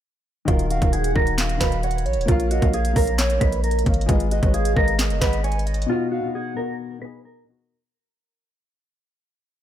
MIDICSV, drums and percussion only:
0, 0, Header, 1, 2, 480
1, 0, Start_track
1, 0, Key_signature, -6, "minor"
1, 0, Tempo, 451128
1, 510, Time_signature, 4, 2, 24, 8
1, 10236, End_track
2, 0, Start_track
2, 0, Title_t, "Drums"
2, 510, Note_on_c, 9, 36, 122
2, 510, Note_on_c, 9, 42, 90
2, 616, Note_off_c, 9, 36, 0
2, 616, Note_off_c, 9, 42, 0
2, 629, Note_on_c, 9, 42, 58
2, 736, Note_off_c, 9, 42, 0
2, 750, Note_on_c, 9, 42, 76
2, 856, Note_off_c, 9, 42, 0
2, 870, Note_on_c, 9, 36, 94
2, 870, Note_on_c, 9, 42, 57
2, 976, Note_off_c, 9, 36, 0
2, 976, Note_off_c, 9, 42, 0
2, 989, Note_on_c, 9, 42, 72
2, 1096, Note_off_c, 9, 42, 0
2, 1109, Note_on_c, 9, 42, 81
2, 1216, Note_off_c, 9, 42, 0
2, 1230, Note_on_c, 9, 36, 97
2, 1336, Note_off_c, 9, 36, 0
2, 1350, Note_on_c, 9, 42, 54
2, 1456, Note_off_c, 9, 42, 0
2, 1470, Note_on_c, 9, 38, 123
2, 1470, Note_on_c, 9, 42, 86
2, 1479, Note_on_c, 9, 39, 100
2, 1576, Note_off_c, 9, 38, 0
2, 1576, Note_off_c, 9, 42, 0
2, 1585, Note_off_c, 9, 39, 0
2, 1590, Note_on_c, 9, 42, 55
2, 1696, Note_off_c, 9, 42, 0
2, 1710, Note_on_c, 9, 36, 102
2, 1710, Note_on_c, 9, 38, 100
2, 1710, Note_on_c, 9, 42, 94
2, 1718, Note_on_c, 9, 39, 81
2, 1816, Note_off_c, 9, 36, 0
2, 1816, Note_off_c, 9, 38, 0
2, 1816, Note_off_c, 9, 42, 0
2, 1825, Note_off_c, 9, 39, 0
2, 1830, Note_on_c, 9, 42, 54
2, 1936, Note_off_c, 9, 42, 0
2, 1949, Note_on_c, 9, 42, 57
2, 2030, Note_off_c, 9, 42, 0
2, 2030, Note_on_c, 9, 42, 57
2, 2110, Note_off_c, 9, 42, 0
2, 2110, Note_on_c, 9, 42, 56
2, 2190, Note_off_c, 9, 42, 0
2, 2190, Note_on_c, 9, 42, 56
2, 2270, Note_off_c, 9, 42, 0
2, 2270, Note_on_c, 9, 42, 57
2, 2350, Note_off_c, 9, 42, 0
2, 2350, Note_on_c, 9, 42, 58
2, 2430, Note_off_c, 9, 42, 0
2, 2430, Note_on_c, 9, 36, 122
2, 2430, Note_on_c, 9, 42, 90
2, 2536, Note_off_c, 9, 36, 0
2, 2536, Note_off_c, 9, 42, 0
2, 2550, Note_on_c, 9, 42, 60
2, 2657, Note_off_c, 9, 42, 0
2, 2670, Note_on_c, 9, 42, 75
2, 2776, Note_off_c, 9, 42, 0
2, 2789, Note_on_c, 9, 42, 57
2, 2790, Note_on_c, 9, 36, 97
2, 2896, Note_off_c, 9, 36, 0
2, 2896, Note_off_c, 9, 42, 0
2, 2910, Note_on_c, 9, 42, 70
2, 3016, Note_off_c, 9, 42, 0
2, 3030, Note_on_c, 9, 42, 85
2, 3136, Note_off_c, 9, 42, 0
2, 3150, Note_on_c, 9, 36, 96
2, 3150, Note_on_c, 9, 46, 80
2, 3256, Note_off_c, 9, 36, 0
2, 3256, Note_off_c, 9, 46, 0
2, 3270, Note_on_c, 9, 42, 55
2, 3376, Note_off_c, 9, 42, 0
2, 3389, Note_on_c, 9, 38, 125
2, 3389, Note_on_c, 9, 42, 85
2, 3398, Note_on_c, 9, 39, 101
2, 3496, Note_off_c, 9, 38, 0
2, 3496, Note_off_c, 9, 42, 0
2, 3505, Note_off_c, 9, 39, 0
2, 3509, Note_on_c, 9, 42, 53
2, 3616, Note_off_c, 9, 42, 0
2, 3629, Note_on_c, 9, 36, 97
2, 3630, Note_on_c, 9, 42, 94
2, 3736, Note_off_c, 9, 36, 0
2, 3736, Note_off_c, 9, 42, 0
2, 3750, Note_on_c, 9, 42, 54
2, 3856, Note_off_c, 9, 42, 0
2, 3869, Note_on_c, 9, 42, 57
2, 3949, Note_off_c, 9, 42, 0
2, 3949, Note_on_c, 9, 42, 57
2, 4029, Note_off_c, 9, 42, 0
2, 4029, Note_on_c, 9, 42, 57
2, 4109, Note_off_c, 9, 42, 0
2, 4109, Note_on_c, 9, 42, 57
2, 4111, Note_on_c, 9, 36, 88
2, 4190, Note_off_c, 9, 42, 0
2, 4190, Note_on_c, 9, 42, 57
2, 4217, Note_off_c, 9, 36, 0
2, 4270, Note_off_c, 9, 42, 0
2, 4270, Note_on_c, 9, 42, 58
2, 4349, Note_off_c, 9, 42, 0
2, 4349, Note_on_c, 9, 42, 96
2, 4350, Note_on_c, 9, 36, 125
2, 4456, Note_off_c, 9, 36, 0
2, 4456, Note_off_c, 9, 42, 0
2, 4470, Note_on_c, 9, 42, 60
2, 4576, Note_off_c, 9, 42, 0
2, 4590, Note_on_c, 9, 42, 74
2, 4696, Note_off_c, 9, 42, 0
2, 4710, Note_on_c, 9, 36, 94
2, 4710, Note_on_c, 9, 42, 57
2, 4817, Note_off_c, 9, 36, 0
2, 4817, Note_off_c, 9, 42, 0
2, 4830, Note_on_c, 9, 42, 72
2, 4936, Note_off_c, 9, 42, 0
2, 4950, Note_on_c, 9, 42, 84
2, 5057, Note_off_c, 9, 42, 0
2, 5070, Note_on_c, 9, 36, 98
2, 5176, Note_off_c, 9, 36, 0
2, 5190, Note_on_c, 9, 42, 52
2, 5296, Note_off_c, 9, 42, 0
2, 5310, Note_on_c, 9, 38, 122
2, 5310, Note_on_c, 9, 42, 83
2, 5319, Note_on_c, 9, 39, 102
2, 5416, Note_off_c, 9, 38, 0
2, 5416, Note_off_c, 9, 42, 0
2, 5425, Note_off_c, 9, 39, 0
2, 5430, Note_on_c, 9, 42, 55
2, 5536, Note_off_c, 9, 42, 0
2, 5550, Note_on_c, 9, 36, 105
2, 5550, Note_on_c, 9, 38, 102
2, 5550, Note_on_c, 9, 42, 92
2, 5559, Note_on_c, 9, 39, 81
2, 5656, Note_off_c, 9, 36, 0
2, 5656, Note_off_c, 9, 38, 0
2, 5656, Note_off_c, 9, 42, 0
2, 5665, Note_off_c, 9, 39, 0
2, 5670, Note_on_c, 9, 42, 54
2, 5777, Note_off_c, 9, 42, 0
2, 5790, Note_on_c, 9, 42, 59
2, 5870, Note_off_c, 9, 42, 0
2, 5870, Note_on_c, 9, 42, 57
2, 5950, Note_off_c, 9, 42, 0
2, 5950, Note_on_c, 9, 42, 56
2, 6030, Note_off_c, 9, 42, 0
2, 6030, Note_on_c, 9, 42, 55
2, 6110, Note_off_c, 9, 42, 0
2, 6110, Note_on_c, 9, 42, 56
2, 6190, Note_off_c, 9, 42, 0
2, 6190, Note_on_c, 9, 42, 59
2, 6296, Note_off_c, 9, 42, 0
2, 10236, End_track
0, 0, End_of_file